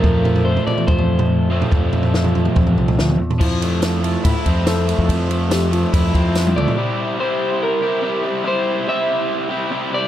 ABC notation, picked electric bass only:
X:1
M:4/4
L:1/16
Q:1/4=142
K:Flyd
V:1 name="Picked electric bass" clef=bass
F,,6 z2 F,,8 | F,,8 F,,2 C,,2 D,,2 E,,2 | F,,8 A,, z F,,4- F,, F,, | F,,8 F,,2 F,,4 D,, z |
z16 | z16 |]